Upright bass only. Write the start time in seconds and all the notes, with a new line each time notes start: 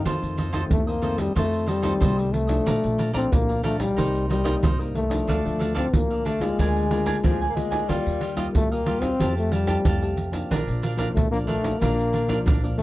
0.05 F2
0.22 F2
0.71 F2
1.36 F2
2.01 C2
2.67 A#1
2.84 A#1
3.32 A#1
3.97 C2
4.63 C2
5.28 D2
5.45 D2
5.94 D2
6.59 D2
7.24 D2
7.89 D#2
8.06 D#2
8.54 D#2
9.20 F2
9.85 F2
10.51 A#1
10.68 A#1
11.16 A#1
11.81 A#1
12.46 A#1